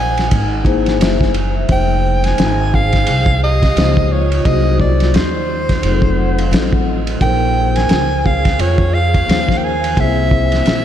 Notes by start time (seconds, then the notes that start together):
Already playing: A#1 G#5
0.17 snare, ride
0.31 G#1, kick, ride
0.64 A#3 D#4 E4 G#4 C5, kick, ride
0.86 snare, ride
1.00 F#1 E5, snare, hi-hat pedal, ride
1.20 G#5, kick, snare
1.34 ride
1.55 E5
1.67 F1 F3 A#3 D#4 G#4 C5, kick, ride
1.72 G5
2.24 C5 G#5, snare, ride
2.38 G#1, snare, hi-hat pedal, ride
2.74 G#4 F5, kick
2.93 kick, snare, ride
3.07 C2, ride
3.26 kick
3.43 G4 D#5
3.62 kick, snare, ride
3.74 C#2 F3 G#3 A#3 D#4 C5, hi-hat pedal, ride
3.78 snare
3.97 kick
4.12 F4 C#5
4.32 ride
4.44 C2 F#3 A#3 D#4 F#4 G#4 C5 D#5, kick, ride
4.79 F4 D5, kick
5.00 snare, ride
5.14 D#2 D#4 C5, snare, hi-hat pedal, ride
5.69 kick, snare, ride
5.81 F1 F#3 C4 D#4 F4 G#4, ride
5.91 A4
6.02 kick
6.17 F#5
6.38 F5, ride
6.51 A1 F#3 C4 D#4 F4 A4 D#5, snare, hi-hat pedal, ride
6.72 F#5, kick
6.86 D#5
7.07 ride
7.19 A#1 F3 A#3 D#4 G#4 A#4 C5 G5, kick, ride
7.75 C5 G#5, snare, ride
7.89 C#2, snare, hi-hat pedal, ride
8.24 G#4 F5, kick
8.45 kick, snare, ride
8.59 F2 F4 C#5, ride
8.78 kick
8.94 G#4 F5
9.14 kick, ride
9.26 D#2 F3 A#3 D#4 G#4 C5, hi-hat pedal, ride
9.31 snare
9.49 kick, snare
9.57 A#4 G5
9.63 C5 G#5
9.84 ride
9.95 C2 A#3 C4 E4 G#4 C5, kick, ride
10.00 E5
10.31 kick
10.52 snare, ride
10.66 A#1, snare, hi-hat pedal, ride